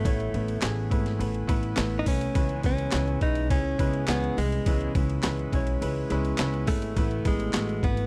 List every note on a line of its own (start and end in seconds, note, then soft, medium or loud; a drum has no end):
0.00 0.33 A2 medium
0.00 0.04 A3 loud
0.00 0.59 A3 medium
0.00 0.05 B3 medium
0.00 0.06 E4 medium
0.00 2.38 A4 medium
0.00 0.35 B4 loud
0.00 0.06 C#5 loud
0.04 0.29 A1 loud
0.04 0.88 A2 medium
0.04 0.34 E3 medium
0.04 0.29 A3 medium
0.04 0.33 A3 loud
0.04 0.32 B3 medium
0.04 0.29 B3 medium
0.04 0.31 E4 loud
0.04 0.29 E4 medium
0.04 0.30 C#5 loud
0.04 kick loud
0.04 ride medium
0.20 ride soft
0.32 0.58 A1 loud
0.32 0.58 A3 medium
0.32 0.61 A3 soft
0.32 0.61 B3 medium
0.32 0.58 B3 medium
0.32 0.62 E4 medium
0.32 0.58 E4 medium
0.32 0.59 B4 medium
0.32 ride medium
0.48 ride soft
0.61 0.87 A1 loud
0.61 1.77 E3 medium
0.61 1.49 A3 medium
0.61 0.86 A3 medium
0.61 1.49 B3 medium
0.61 0.87 B3 medium
0.61 1.48 E4 medium
0.61 0.87 E4 medium
0.61 0.87 G#4 medium
0.61 snare loud
0.61 clap loud
0.61 ride medium
0.63 clap medium
0.90 1.15 G#1 medium
0.90 1.15 A3 medium
0.90 1.15 B3 medium
0.90 1.15 E4 medium
0.90 1.16 B4 loud
0.90 kick medium
0.90 ride soft
1.06 snare soft
1.06 ride soft
1.19 1.44 A1 medium
1.19 1.44 A3 medium
1.19 1.44 B3 medium
1.19 1.44 E4 medium
1.19 1.44 B4 loud
1.19 ride medium
1.34 ride soft
1.47 1.73 A1 medium
1.47 1.72 A3 loud
1.47 1.76 A3 soft
1.47 1.73 B3 loud
1.47 1.78 B3 medium
1.47 1.73 E4 loud
1.47 1.78 E4 medium
1.47 1.73 B4 loud
1.47 kick medium
1.47 ride medium
1.63 ride soft
1.76 2.02 A1 medium
1.76 2.06 E3 medium
1.76 2.01 A3 loud
1.76 2.07 A3 medium
1.76 2.01 B3 loud
1.76 2.07 B3 medium
1.76 2.01 E4 loud
1.76 2.06 E4 medium
1.76 2.02 B4 loud
1.76 snare loud
1.76 clap medium
1.76 ride medium
1.99 2.07 D#4 medium
2.05 2.30 C2 medium
2.05 2.30 A3 medium
2.05 2.36 A3 soft
2.05 2.30 B3 medium
2.05 2.35 B3 soft
2.05 2.61 C#4 medium
2.05 2.30 E4 medium
2.05 2.35 E4 medium
2.05 2.31 B4 medium
2.05 kick medium
2.05 open hi-hat medium
2.05 ride medium
2.21 ride medium
2.34 2.59 C#2 loud
2.34 3.18 C#3 medium
2.34 2.93 C#3 medium
2.34 2.92 E3 loud
2.34 2.59 G#3 medium
2.34 2.92 G#3 loud
2.34 2.93 B3 medium
2.34 2.59 C#4 medium
2.34 2.60 E4 medium
2.34 2.94 E4 loud
2.34 2.60 B4 loud
2.34 kick loud
2.34 ride medium
2.49 ride soft
2.63 2.88 C#2 medium
2.63 2.88 G#3 medium
2.63 2.88 C#4 medium
2.63 3.19 C#4 medium
2.63 2.88 E4 medium
2.63 2.88 B4 medium
2.63 kick medium
2.63 ride medium
2.78 ride soft
2.91 3.17 C#2 loud
2.91 4.07 E3 medium
2.91 3.17 G#3 medium
2.91 3.79 G#3 medium
2.91 3.79 B3 medium
2.91 3.17 C#4 medium
2.91 3.17 E4 medium
2.91 snare loud
2.91 clap medium
2.91 ride medium
2.93 3.78 E4 medium
2.93 3.17 B4 medium
2.93 clap medium
3.08 ride soft
3.21 3.51 B1 medium
3.21 3.45 G#3 medium
3.21 3.46 C#4 medium
3.21 3.49 D#4 loud
3.21 3.46 E4 medium
3.21 3.46 B4 medium
3.21 kick medium
3.21 ride medium
3.35 ride soft
3.49 3.74 C#2 loud
3.49 3.74 G#3 medium
3.49 3.75 C#4 medium
3.49 4.05 C#4 loud
3.49 3.75 E4 medium
3.49 3.75 G#4 medium
3.49 kick medium
3.49 ride medium
3.78 4.03 C#2 loud
3.78 4.03 G#3 loud
3.78 4.07 G#3 medium
3.78 4.08 B3 medium
3.78 4.03 C#4 medium
3.78 4.08 E4 medium
3.78 4.04 E4 medium
3.78 4.04 B4 loud
3.78 kick medium
3.78 ride medium
3.93 ride soft
4.07 4.32 C#2 medium
4.07 4.37 E3 medium
4.07 4.32 G#3 medium
4.07 4.37 G#3 medium
4.07 4.36 B3 medium
4.07 4.39 B3 medium
4.07 4.32 C#4 medium
4.07 4.33 E4 medium
4.07 4.35 E4 medium
4.07 4.33 G#4 loud
4.07 snare loud
4.07 clap medium
4.07 clap loud
4.07 ride medium
4.24 ride soft
4.36 4.61 C2 medium
4.36 4.61 G#3 medium
4.36 4.91 G#3 medium
4.36 4.66 G#3 soft
4.36 4.66 B3 medium
4.36 4.61 C#4 medium
4.36 4.66 E4 medium
4.36 4.61 E4 medium
4.36 4.62 G#4 medium
4.36 open hi-hat medium
4.36 ride medium
4.52 ride soft
4.66 4.90 C#2 loud
4.66 4.95 C#3 medium
4.66 5.49 C#3 medium
4.66 4.95 E3 medium
4.66 4.90 G#3 medium
4.66 4.95 G#3 loud
4.66 4.94 B3 loud
4.66 4.90 C#4 medium
4.66 4.91 E4 medium
4.66 4.93 E4 medium
4.66 4.91 B4 loud
4.66 kick loud
4.66 ride medium
4.81 ride soft
4.94 5.19 C#2 loud
4.94 5.18 G#3 medium
4.94 5.23 G#3 soft
4.94 5.24 B3 medium
4.94 5.19 C#4 medium
4.94 5.23 E4 medium
4.94 5.19 E4 medium
4.94 5.19 B4 medium
4.94 kick medium
4.94 ride medium
5.10 ride soft
5.22 5.48 C#2 loud
5.22 6.38 E3 medium
5.22 5.47 G#3 medium
5.22 6.10 G#3 medium
5.22 6.11 B3 medium
5.22 5.47 C#4 medium
5.22 5.48 E4 medium
5.22 6.10 E4 medium
5.22 5.48 B4 loud
5.22 snare loud
5.22 clap medium
5.22 ride medium
5.39 ride soft
5.53 5.76 B1 medium
5.53 5.77 G#3 medium
5.53 5.77 C#4 medium
5.53 5.77 E4 medium
5.53 5.78 C#5 loud
5.53 kick medium
5.53 ride medium
5.67 ride soft
5.81 6.05 C#2 medium
5.81 6.05 G#3 medium
5.81 6.05 C#4 medium
5.81 6.05 E4 medium
5.81 6.06 B4 loud
5.81 ride medium
6.10 6.34 C#2 medium
6.10 6.34 G#3 loud
6.10 6.38 G#3 medium
6.10 6.39 B3 medium
6.10 6.34 C#4 loud
6.10 6.39 E4 medium
6.10 6.34 E4 loud
6.10 6.35 B4 loud
6.10 ride medium
6.25 ride soft
6.38 6.62 C#2 loud
6.38 6.96 E3 medium
6.38 6.63 G#3 loud
6.38 6.97 G#3 medium
6.38 6.97 B3 medium
6.38 6.63 C#4 loud
6.38 6.63 E4 loud
6.38 6.97 E4 medium
6.38 6.64 B4 loud
6.38 snare loud
6.38 clap medium
6.38 clap loud
6.38 ride medium
6.54 ride soft
6.67 6.91 G#1 medium
6.67 6.92 G#3 medium
6.67 7.27 A3 loud
6.67 6.92 C#4 medium
6.67 6.92 E4 medium
6.67 6.92 B4 medium
6.67 kick medium
6.67 open hi-hat medium
6.67 ride medium
6.82 ride medium
6.96 7.20 A1 loud
6.96 7.54 A2 medium
6.96 7.79 A2 medium
6.96 7.54 E3 medium
6.96 7.21 A3 medium
6.96 7.54 A3 loud
6.96 7.21 B3 medium
6.96 7.55 B3 loud
6.96 7.21 E4 medium
6.96 7.55 E4 medium
6.96 7.21 B4 loud
6.96 kick loud
6.96 ride medium
7.11 ride soft
7.24 7.49 A1 loud
7.24 7.86 G#3 loud
7.24 7.49 A3 medium
7.24 7.49 B3 medium
7.24 7.49 E4 medium
7.24 7.49 B4 medium
7.24 kick loud
7.24 ride medium
7.40 ride soft
7.53 8.07 E3 medium
7.53 7.78 A3 medium
7.53 8.07 A3 medium
7.53 7.78 B3 medium
7.53 snare loud
7.53 clap medium
7.53 ride medium
7.55 7.78 A1 loud
7.55 8.07 B3 medium
7.55 7.79 E4 medium
7.55 8.07 E4 medium
7.55 7.79 F#4 medium
7.55 clap medium
7.69 ride soft
7.83 8.06 G#1 medium
7.83 8.07 A3 medium
7.83 8.07 B3 medium
7.83 8.07 B3 loud
7.83 8.07 E4 medium
7.83 8.07 B4 medium
7.83 kick medium
7.83 ride soft
7.97 ride soft